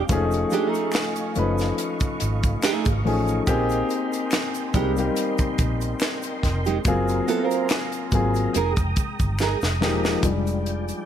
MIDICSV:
0, 0, Header, 1, 8, 480
1, 0, Start_track
1, 0, Tempo, 845070
1, 52, Time_signature, 4, 2, 24, 8
1, 6279, End_track
2, 0, Start_track
2, 0, Title_t, "Tonewheel organ"
2, 0, Program_c, 0, 16
2, 0, Note_on_c, 0, 77, 52
2, 51, Note_on_c, 0, 85, 69
2, 52, Note_on_c, 0, 57, 59
2, 53, Note_on_c, 0, 75, 53
2, 1949, Note_off_c, 0, 77, 0
2, 1952, Note_off_c, 0, 85, 0
2, 1953, Note_off_c, 0, 57, 0
2, 1970, Note_on_c, 0, 70, 64
2, 1970, Note_on_c, 0, 84, 72
2, 1972, Note_on_c, 0, 79, 59
2, 3870, Note_off_c, 0, 75, 0
2, 3873, Note_off_c, 0, 79, 0
2, 3894, Note_on_c, 0, 77, 53
2, 3896, Note_on_c, 0, 82, 54
2, 4828, Note_off_c, 0, 70, 0
2, 4828, Note_off_c, 0, 84, 0
2, 4838, Note_off_c, 0, 82, 0
2, 4843, Note_off_c, 0, 77, 0
2, 4845, Note_on_c, 0, 82, 57
2, 4845, Note_on_c, 0, 87, 74
2, 4846, Note_on_c, 0, 79, 61
2, 4848, Note_on_c, 0, 56, 66
2, 5799, Note_off_c, 0, 79, 0
2, 5799, Note_off_c, 0, 82, 0
2, 5799, Note_off_c, 0, 87, 0
2, 5800, Note_off_c, 0, 56, 0
2, 5809, Note_on_c, 0, 74, 54
2, 5809, Note_on_c, 0, 79, 68
2, 5810, Note_on_c, 0, 53, 61
2, 5810, Note_on_c, 0, 65, 52
2, 6279, Note_off_c, 0, 53, 0
2, 6279, Note_off_c, 0, 65, 0
2, 6279, Note_off_c, 0, 74, 0
2, 6279, Note_off_c, 0, 79, 0
2, 6279, End_track
3, 0, Start_track
3, 0, Title_t, "Nylon-string guitar"
3, 0, Program_c, 1, 24
3, 294, Note_on_c, 1, 56, 82
3, 301, Note_on_c, 1, 62, 94
3, 305, Note_on_c, 1, 67, 95
3, 385, Note_off_c, 1, 56, 0
3, 385, Note_on_c, 1, 57, 82
3, 392, Note_off_c, 1, 62, 0
3, 392, Note_on_c, 1, 63, 94
3, 395, Note_off_c, 1, 67, 0
3, 395, Note_on_c, 1, 68, 95
3, 515, Note_off_c, 1, 57, 0
3, 519, Note_off_c, 1, 63, 0
3, 521, Note_off_c, 1, 68, 0
3, 1495, Note_on_c, 1, 57, 78
3, 1500, Note_on_c, 1, 63, 94
3, 1505, Note_on_c, 1, 68, 93
3, 1617, Note_off_c, 1, 57, 0
3, 1619, Note_off_c, 1, 63, 0
3, 1622, Note_off_c, 1, 68, 0
3, 2697, Note_on_c, 1, 56, 69
3, 2703, Note_on_c, 1, 63, 76
3, 2707, Note_on_c, 1, 67, 90
3, 2789, Note_off_c, 1, 56, 0
3, 2792, Note_off_c, 1, 63, 0
3, 2794, Note_off_c, 1, 67, 0
3, 3783, Note_on_c, 1, 67, 55
3, 3790, Note_on_c, 1, 63, 48
3, 3792, Note_on_c, 1, 56, 48
3, 3845, Note_off_c, 1, 67, 0
3, 3848, Note_off_c, 1, 63, 0
3, 3849, Note_off_c, 1, 56, 0
3, 4133, Note_on_c, 1, 59, 87
3, 4136, Note_on_c, 1, 64, 84
3, 4143, Note_on_c, 1, 69, 103
3, 4224, Note_off_c, 1, 59, 0
3, 4224, Note_on_c, 1, 60, 87
3, 4226, Note_off_c, 1, 64, 0
3, 4226, Note_on_c, 1, 65, 84
3, 4234, Note_off_c, 1, 69, 0
3, 4234, Note_on_c, 1, 70, 103
3, 4355, Note_off_c, 1, 60, 0
3, 4356, Note_off_c, 1, 65, 0
3, 4360, Note_off_c, 1, 70, 0
3, 4858, Note_on_c, 1, 63, 71
3, 4864, Note_on_c, 1, 68, 76
3, 4867, Note_on_c, 1, 70, 84
3, 4950, Note_off_c, 1, 63, 0
3, 4952, Note_off_c, 1, 68, 0
3, 4954, Note_off_c, 1, 70, 0
3, 5342, Note_on_c, 1, 63, 78
3, 5346, Note_on_c, 1, 68, 86
3, 5352, Note_on_c, 1, 70, 87
3, 5432, Note_off_c, 1, 63, 0
3, 5433, Note_off_c, 1, 68, 0
3, 5436, Note_off_c, 1, 70, 0
3, 6279, End_track
4, 0, Start_track
4, 0, Title_t, "Grand piano"
4, 0, Program_c, 2, 0
4, 0, Control_c, 2, 64, 127
4, 0, Note_on_c, 2, 53, 74
4, 0, Note_on_c, 2, 56, 62
4, 0, Note_on_c, 2, 60, 65
4, 0, Note_on_c, 2, 62, 67
4, 0, Note_on_c, 2, 68, 81
4, 51, Note_off_c, 2, 53, 0
4, 51, Note_on_c, 2, 53, 93
4, 55, Note_on_c, 2, 57, 87
4, 59, Note_on_c, 2, 61, 90
4, 61, Control_c, 2, 64, 0
4, 62, Note_off_c, 2, 56, 0
4, 62, Note_off_c, 2, 68, 0
4, 63, Note_on_c, 2, 63, 87
4, 64, Note_off_c, 2, 60, 0
4, 65, Note_off_c, 2, 62, 0
4, 67, Note_on_c, 2, 68, 108
4, 159, Control_c, 2, 64, 127
4, 683, Note_off_c, 2, 53, 0
4, 685, Note_off_c, 2, 57, 0
4, 686, Note_off_c, 2, 61, 0
4, 689, Note_off_c, 2, 63, 0
4, 690, Note_off_c, 2, 68, 0
4, 770, Note_on_c, 2, 53, 76
4, 775, Note_on_c, 2, 57, 61
4, 778, Note_on_c, 2, 61, 65
4, 782, Note_on_c, 2, 63, 72
4, 786, Note_on_c, 2, 71, 81
4, 1611, Note_off_c, 2, 53, 0
4, 1613, Note_off_c, 2, 57, 0
4, 1615, Note_off_c, 2, 61, 0
4, 1617, Note_off_c, 2, 63, 0
4, 1619, Note_off_c, 2, 71, 0
4, 1732, Note_on_c, 2, 53, 83
4, 1736, Note_on_c, 2, 57, 67
4, 1741, Note_on_c, 2, 61, 77
4, 1744, Note_on_c, 2, 63, 71
4, 1748, Note_on_c, 2, 68, 85
4, 1943, Note_off_c, 2, 53, 0
4, 1944, Note_off_c, 2, 57, 0
4, 1947, Note_off_c, 2, 61, 0
4, 1948, Note_off_c, 2, 63, 0
4, 1950, Note_off_c, 2, 68, 0
4, 1972, Note_on_c, 2, 67, 111
4, 1975, Note_on_c, 2, 58, 89
4, 1979, Note_on_c, 2, 60, 99
4, 1980, Control_c, 2, 64, 0
4, 1983, Note_on_c, 2, 63, 92
4, 1987, Note_on_c, 2, 68, 101
4, 2093, Control_c, 2, 64, 127
4, 2603, Note_off_c, 2, 67, 0
4, 2605, Note_off_c, 2, 58, 0
4, 2607, Note_off_c, 2, 60, 0
4, 2609, Note_off_c, 2, 63, 0
4, 2611, Note_off_c, 2, 68, 0
4, 2691, Note_on_c, 2, 55, 76
4, 2695, Note_on_c, 2, 58, 66
4, 2699, Note_on_c, 2, 60, 66
4, 2703, Note_on_c, 2, 63, 74
4, 2705, Note_on_c, 2, 67, 81
4, 2804, Note_off_c, 2, 55, 0
4, 2806, Note_off_c, 2, 58, 0
4, 2808, Note_off_c, 2, 60, 0
4, 2810, Note_off_c, 2, 63, 0
4, 2811, Note_off_c, 2, 67, 0
4, 2822, Note_on_c, 2, 55, 71
4, 2825, Note_on_c, 2, 58, 76
4, 2829, Note_on_c, 2, 60, 69
4, 2834, Note_on_c, 2, 63, 68
4, 2838, Note_on_c, 2, 67, 87
4, 3643, Note_off_c, 2, 55, 0
4, 3645, Note_off_c, 2, 58, 0
4, 3647, Note_off_c, 2, 60, 0
4, 3649, Note_off_c, 2, 63, 0
4, 3651, Note_off_c, 2, 67, 0
4, 3894, Note_on_c, 2, 54, 97
4, 3897, Note_on_c, 2, 58, 86
4, 3899, Control_c, 2, 64, 0
4, 3901, Note_on_c, 2, 60, 94
4, 3906, Note_on_c, 2, 65, 98
4, 3909, Note_on_c, 2, 68, 97
4, 4010, Control_c, 2, 64, 127
4, 4524, Note_off_c, 2, 54, 0
4, 4526, Note_off_c, 2, 58, 0
4, 4527, Note_off_c, 2, 60, 0
4, 4530, Note_off_c, 2, 65, 0
4, 4532, Note_off_c, 2, 68, 0
4, 4612, Note_on_c, 2, 54, 72
4, 4615, Note_on_c, 2, 58, 71
4, 4619, Note_on_c, 2, 60, 68
4, 4624, Note_on_c, 2, 65, 64
4, 4628, Note_on_c, 2, 68, 88
4, 4852, Note_off_c, 2, 54, 0
4, 4854, Note_off_c, 2, 58, 0
4, 4856, Note_off_c, 2, 60, 0
4, 4858, Note_off_c, 2, 65, 0
4, 4858, Control_c, 2, 64, 0
4, 4860, Note_off_c, 2, 68, 0
4, 4975, Control_c, 2, 64, 127
4, 5570, Note_on_c, 2, 53, 75
4, 5575, Note_on_c, 2, 56, 67
4, 5577, Note_on_c, 2, 58, 69
4, 5580, Note_on_c, 2, 63, 67
4, 5585, Note_on_c, 2, 67, 87
4, 5782, Note_off_c, 2, 53, 0
4, 5784, Note_off_c, 2, 56, 0
4, 5785, Note_off_c, 2, 58, 0
4, 5787, Note_off_c, 2, 63, 0
4, 5789, Note_off_c, 2, 67, 0
4, 5817, Note_on_c, 2, 55, 52
4, 5818, Control_c, 2, 64, 0
4, 5819, Note_on_c, 2, 56, 43
4, 5823, Note_on_c, 2, 62, 57
4, 5920, Control_c, 2, 64, 127
4, 6141, Note_off_c, 2, 55, 0
4, 6142, Note_off_c, 2, 56, 0
4, 6145, Note_off_c, 2, 62, 0
4, 6279, End_track
5, 0, Start_track
5, 0, Title_t, "Fingered electric bass"
5, 0, Program_c, 3, 33
5, 58, Note_on_c, 3, 29, 88
5, 247, Note_off_c, 3, 29, 0
5, 779, Note_on_c, 3, 30, 78
5, 968, Note_off_c, 3, 30, 0
5, 1261, Note_on_c, 3, 32, 78
5, 1449, Note_off_c, 3, 32, 0
5, 1630, Note_on_c, 3, 32, 89
5, 1714, Note_off_c, 3, 32, 0
5, 1738, Note_on_c, 3, 33, 90
5, 1927, Note_off_c, 3, 33, 0
5, 1978, Note_on_c, 3, 34, 80
5, 2167, Note_off_c, 3, 34, 0
5, 2698, Note_on_c, 3, 36, 85
5, 2887, Note_off_c, 3, 36, 0
5, 3178, Note_on_c, 3, 34, 78
5, 3367, Note_off_c, 3, 34, 0
5, 3659, Note_on_c, 3, 29, 80
5, 3848, Note_off_c, 3, 29, 0
5, 3896, Note_on_c, 3, 30, 81
5, 4086, Note_off_c, 3, 30, 0
5, 4617, Note_on_c, 3, 32, 80
5, 4806, Note_off_c, 3, 32, 0
5, 4860, Note_on_c, 3, 29, 99
5, 4961, Note_off_c, 3, 29, 0
5, 4987, Note_on_c, 3, 29, 79
5, 5073, Note_off_c, 3, 29, 0
5, 5230, Note_on_c, 3, 31, 86
5, 5418, Note_off_c, 3, 31, 0
5, 5467, Note_on_c, 3, 29, 87
5, 5577, Note_off_c, 3, 29, 0
5, 5577, Note_on_c, 3, 28, 81
5, 5766, Note_off_c, 3, 28, 0
5, 5814, Note_on_c, 3, 29, 85
5, 6197, Note_off_c, 3, 29, 0
5, 6279, End_track
6, 0, Start_track
6, 0, Title_t, "Muted fingered electric bass strokes"
6, 1146, Note_on_c, 9, 29, 42
6, 1202, Note_off_c, 9, 29, 0
6, 3065, Note_on_c, 9, 29, 39
6, 3122, Note_off_c, 9, 29, 0
6, 6279, End_track
7, 0, Start_track
7, 0, Title_t, "Muted nylon-string guitar strokes"
7, 2460, Note_on_c, 9, 29, 35
7, 2517, Note_off_c, 9, 29, 0
7, 6279, End_track
8, 0, Start_track
8, 0, Title_t, "Drums"
8, 50, Note_on_c, 9, 82, 58
8, 53, Note_on_c, 9, 36, 109
8, 53, Note_on_c, 9, 42, 80
8, 107, Note_off_c, 9, 82, 0
8, 109, Note_off_c, 9, 36, 0
8, 110, Note_off_c, 9, 42, 0
8, 178, Note_on_c, 9, 82, 43
8, 192, Note_on_c, 9, 42, 39
8, 234, Note_off_c, 9, 82, 0
8, 249, Note_off_c, 9, 42, 0
8, 286, Note_on_c, 9, 82, 40
8, 299, Note_on_c, 9, 42, 55
8, 343, Note_off_c, 9, 82, 0
8, 356, Note_off_c, 9, 42, 0
8, 421, Note_on_c, 9, 82, 44
8, 426, Note_on_c, 9, 42, 43
8, 478, Note_off_c, 9, 82, 0
8, 483, Note_off_c, 9, 42, 0
8, 521, Note_on_c, 9, 26, 63
8, 521, Note_on_c, 9, 82, 56
8, 531, Note_on_c, 9, 42, 74
8, 539, Note_on_c, 9, 38, 120
8, 545, Note_off_c, 9, 26, 0
8, 545, Note_on_c, 9, 26, 102
8, 577, Note_off_c, 9, 82, 0
8, 588, Note_off_c, 9, 42, 0
8, 596, Note_off_c, 9, 38, 0
8, 602, Note_off_c, 9, 26, 0
8, 658, Note_on_c, 9, 42, 46
8, 658, Note_on_c, 9, 82, 48
8, 714, Note_off_c, 9, 42, 0
8, 715, Note_off_c, 9, 82, 0
8, 767, Note_on_c, 9, 82, 41
8, 769, Note_on_c, 9, 42, 66
8, 824, Note_off_c, 9, 82, 0
8, 826, Note_off_c, 9, 42, 0
8, 898, Note_on_c, 9, 82, 43
8, 906, Note_on_c, 9, 42, 38
8, 909, Note_on_c, 9, 38, 33
8, 955, Note_off_c, 9, 82, 0
8, 963, Note_off_c, 9, 42, 0
8, 965, Note_off_c, 9, 38, 0
8, 1012, Note_on_c, 9, 42, 77
8, 1014, Note_on_c, 9, 82, 59
8, 1069, Note_off_c, 9, 42, 0
8, 1071, Note_off_c, 9, 82, 0
8, 1137, Note_on_c, 9, 42, 48
8, 1137, Note_on_c, 9, 82, 41
8, 1141, Note_on_c, 9, 36, 94
8, 1193, Note_off_c, 9, 82, 0
8, 1194, Note_off_c, 9, 42, 0
8, 1198, Note_off_c, 9, 36, 0
8, 1250, Note_on_c, 9, 42, 76
8, 1255, Note_on_c, 9, 82, 53
8, 1306, Note_off_c, 9, 42, 0
8, 1312, Note_off_c, 9, 82, 0
8, 1381, Note_on_c, 9, 42, 46
8, 1383, Note_on_c, 9, 36, 90
8, 1383, Note_on_c, 9, 82, 44
8, 1437, Note_off_c, 9, 42, 0
8, 1440, Note_off_c, 9, 36, 0
8, 1440, Note_off_c, 9, 82, 0
8, 1491, Note_on_c, 9, 26, 67
8, 1491, Note_on_c, 9, 82, 60
8, 1495, Note_on_c, 9, 42, 83
8, 1497, Note_on_c, 9, 38, 92
8, 1502, Note_off_c, 9, 26, 0
8, 1502, Note_on_c, 9, 26, 81
8, 1548, Note_off_c, 9, 82, 0
8, 1552, Note_off_c, 9, 42, 0
8, 1553, Note_off_c, 9, 38, 0
8, 1559, Note_off_c, 9, 26, 0
8, 1619, Note_on_c, 9, 82, 48
8, 1620, Note_on_c, 9, 42, 46
8, 1625, Note_on_c, 9, 36, 94
8, 1676, Note_off_c, 9, 82, 0
8, 1677, Note_off_c, 9, 42, 0
8, 1682, Note_off_c, 9, 36, 0
8, 1741, Note_on_c, 9, 46, 39
8, 1798, Note_off_c, 9, 46, 0
8, 1860, Note_on_c, 9, 82, 37
8, 1868, Note_on_c, 9, 42, 46
8, 1917, Note_off_c, 9, 82, 0
8, 1925, Note_off_c, 9, 42, 0
8, 1971, Note_on_c, 9, 82, 70
8, 1972, Note_on_c, 9, 36, 103
8, 1972, Note_on_c, 9, 42, 82
8, 2027, Note_off_c, 9, 82, 0
8, 2029, Note_off_c, 9, 36, 0
8, 2029, Note_off_c, 9, 42, 0
8, 2099, Note_on_c, 9, 82, 43
8, 2111, Note_on_c, 9, 42, 38
8, 2156, Note_off_c, 9, 82, 0
8, 2167, Note_off_c, 9, 42, 0
8, 2211, Note_on_c, 9, 82, 38
8, 2218, Note_on_c, 9, 42, 56
8, 2268, Note_off_c, 9, 82, 0
8, 2275, Note_off_c, 9, 42, 0
8, 2344, Note_on_c, 9, 82, 40
8, 2348, Note_on_c, 9, 42, 45
8, 2401, Note_off_c, 9, 82, 0
8, 2405, Note_off_c, 9, 42, 0
8, 2447, Note_on_c, 9, 26, 63
8, 2447, Note_on_c, 9, 82, 62
8, 2452, Note_on_c, 9, 42, 75
8, 2459, Note_on_c, 9, 38, 113
8, 2465, Note_off_c, 9, 26, 0
8, 2465, Note_on_c, 9, 26, 96
8, 2504, Note_off_c, 9, 82, 0
8, 2509, Note_off_c, 9, 42, 0
8, 2516, Note_off_c, 9, 38, 0
8, 2522, Note_off_c, 9, 26, 0
8, 2581, Note_on_c, 9, 42, 42
8, 2583, Note_on_c, 9, 82, 50
8, 2638, Note_off_c, 9, 42, 0
8, 2639, Note_off_c, 9, 82, 0
8, 2691, Note_on_c, 9, 82, 45
8, 2693, Note_on_c, 9, 36, 92
8, 2693, Note_on_c, 9, 42, 77
8, 2748, Note_off_c, 9, 82, 0
8, 2750, Note_off_c, 9, 36, 0
8, 2750, Note_off_c, 9, 42, 0
8, 2821, Note_on_c, 9, 82, 45
8, 2830, Note_on_c, 9, 42, 41
8, 2878, Note_off_c, 9, 82, 0
8, 2887, Note_off_c, 9, 42, 0
8, 2933, Note_on_c, 9, 42, 73
8, 2933, Note_on_c, 9, 82, 66
8, 2990, Note_off_c, 9, 42, 0
8, 2990, Note_off_c, 9, 82, 0
8, 3056, Note_on_c, 9, 82, 41
8, 3058, Note_on_c, 9, 42, 51
8, 3062, Note_on_c, 9, 36, 85
8, 3112, Note_off_c, 9, 82, 0
8, 3115, Note_off_c, 9, 42, 0
8, 3118, Note_off_c, 9, 36, 0
8, 3171, Note_on_c, 9, 42, 75
8, 3173, Note_on_c, 9, 82, 53
8, 3174, Note_on_c, 9, 36, 100
8, 3228, Note_off_c, 9, 42, 0
8, 3229, Note_off_c, 9, 82, 0
8, 3231, Note_off_c, 9, 36, 0
8, 3301, Note_on_c, 9, 82, 43
8, 3302, Note_on_c, 9, 42, 45
8, 3357, Note_off_c, 9, 82, 0
8, 3358, Note_off_c, 9, 42, 0
8, 3406, Note_on_c, 9, 26, 63
8, 3406, Note_on_c, 9, 82, 62
8, 3417, Note_on_c, 9, 42, 83
8, 3418, Note_on_c, 9, 38, 100
8, 3424, Note_off_c, 9, 26, 0
8, 3424, Note_on_c, 9, 26, 83
8, 3463, Note_off_c, 9, 82, 0
8, 3474, Note_off_c, 9, 42, 0
8, 3475, Note_off_c, 9, 38, 0
8, 3480, Note_off_c, 9, 26, 0
8, 3536, Note_on_c, 9, 82, 53
8, 3542, Note_on_c, 9, 42, 45
8, 3593, Note_off_c, 9, 82, 0
8, 3598, Note_off_c, 9, 42, 0
8, 3654, Note_on_c, 9, 36, 71
8, 3656, Note_on_c, 9, 38, 34
8, 3658, Note_on_c, 9, 42, 55
8, 3711, Note_off_c, 9, 36, 0
8, 3713, Note_off_c, 9, 38, 0
8, 3715, Note_off_c, 9, 42, 0
8, 3778, Note_on_c, 9, 82, 38
8, 3786, Note_on_c, 9, 42, 48
8, 3834, Note_off_c, 9, 82, 0
8, 3843, Note_off_c, 9, 42, 0
8, 3889, Note_on_c, 9, 82, 65
8, 3890, Note_on_c, 9, 42, 74
8, 3891, Note_on_c, 9, 36, 115
8, 3946, Note_off_c, 9, 42, 0
8, 3946, Note_off_c, 9, 82, 0
8, 3948, Note_off_c, 9, 36, 0
8, 4021, Note_on_c, 9, 82, 41
8, 4029, Note_on_c, 9, 42, 41
8, 4078, Note_off_c, 9, 82, 0
8, 4086, Note_off_c, 9, 42, 0
8, 4136, Note_on_c, 9, 82, 42
8, 4137, Note_on_c, 9, 42, 52
8, 4192, Note_off_c, 9, 82, 0
8, 4194, Note_off_c, 9, 42, 0
8, 4265, Note_on_c, 9, 82, 47
8, 4266, Note_on_c, 9, 42, 46
8, 4322, Note_off_c, 9, 82, 0
8, 4323, Note_off_c, 9, 42, 0
8, 4368, Note_on_c, 9, 26, 68
8, 4368, Note_on_c, 9, 82, 64
8, 4371, Note_on_c, 9, 42, 76
8, 4379, Note_on_c, 9, 38, 126
8, 4385, Note_off_c, 9, 26, 0
8, 4385, Note_on_c, 9, 26, 98
8, 4425, Note_off_c, 9, 82, 0
8, 4428, Note_off_c, 9, 42, 0
8, 4436, Note_off_c, 9, 38, 0
8, 4441, Note_off_c, 9, 26, 0
8, 4499, Note_on_c, 9, 42, 43
8, 4501, Note_on_c, 9, 82, 43
8, 4556, Note_off_c, 9, 42, 0
8, 4558, Note_off_c, 9, 82, 0
8, 4609, Note_on_c, 9, 82, 46
8, 4611, Note_on_c, 9, 42, 71
8, 4612, Note_on_c, 9, 36, 86
8, 4665, Note_off_c, 9, 82, 0
8, 4668, Note_off_c, 9, 42, 0
8, 4669, Note_off_c, 9, 36, 0
8, 4740, Note_on_c, 9, 82, 39
8, 4749, Note_on_c, 9, 42, 42
8, 4796, Note_off_c, 9, 82, 0
8, 4806, Note_off_c, 9, 42, 0
8, 4853, Note_on_c, 9, 42, 84
8, 4858, Note_on_c, 9, 82, 67
8, 4909, Note_off_c, 9, 42, 0
8, 4914, Note_off_c, 9, 82, 0
8, 4978, Note_on_c, 9, 42, 46
8, 4981, Note_on_c, 9, 36, 93
8, 4982, Note_on_c, 9, 82, 41
8, 5035, Note_off_c, 9, 42, 0
8, 5038, Note_off_c, 9, 36, 0
8, 5039, Note_off_c, 9, 82, 0
8, 5090, Note_on_c, 9, 42, 80
8, 5094, Note_on_c, 9, 36, 96
8, 5095, Note_on_c, 9, 82, 54
8, 5147, Note_off_c, 9, 42, 0
8, 5151, Note_off_c, 9, 36, 0
8, 5152, Note_off_c, 9, 82, 0
8, 5222, Note_on_c, 9, 42, 43
8, 5224, Note_on_c, 9, 36, 86
8, 5225, Note_on_c, 9, 82, 47
8, 5278, Note_off_c, 9, 42, 0
8, 5281, Note_off_c, 9, 36, 0
8, 5281, Note_off_c, 9, 82, 0
8, 5331, Note_on_c, 9, 26, 62
8, 5331, Note_on_c, 9, 82, 61
8, 5341, Note_on_c, 9, 38, 54
8, 5388, Note_off_c, 9, 26, 0
8, 5388, Note_off_c, 9, 82, 0
8, 5397, Note_off_c, 9, 38, 0
8, 5461, Note_on_c, 9, 82, 48
8, 5470, Note_on_c, 9, 38, 64
8, 5518, Note_off_c, 9, 82, 0
8, 5527, Note_off_c, 9, 38, 0
8, 5579, Note_on_c, 9, 38, 85
8, 5635, Note_off_c, 9, 38, 0
8, 5704, Note_on_c, 9, 82, 39
8, 5708, Note_on_c, 9, 38, 85
8, 5761, Note_off_c, 9, 82, 0
8, 5765, Note_off_c, 9, 38, 0
8, 5809, Note_on_c, 9, 42, 77
8, 5811, Note_on_c, 9, 36, 95
8, 5815, Note_on_c, 9, 82, 62
8, 5866, Note_off_c, 9, 42, 0
8, 5867, Note_off_c, 9, 36, 0
8, 5872, Note_off_c, 9, 82, 0
8, 5947, Note_on_c, 9, 82, 40
8, 5948, Note_on_c, 9, 42, 40
8, 6004, Note_off_c, 9, 42, 0
8, 6004, Note_off_c, 9, 82, 0
8, 6056, Note_on_c, 9, 42, 55
8, 6113, Note_off_c, 9, 42, 0
8, 6183, Note_on_c, 9, 42, 44
8, 6183, Note_on_c, 9, 82, 42
8, 6239, Note_off_c, 9, 42, 0
8, 6240, Note_off_c, 9, 82, 0
8, 6279, End_track
0, 0, End_of_file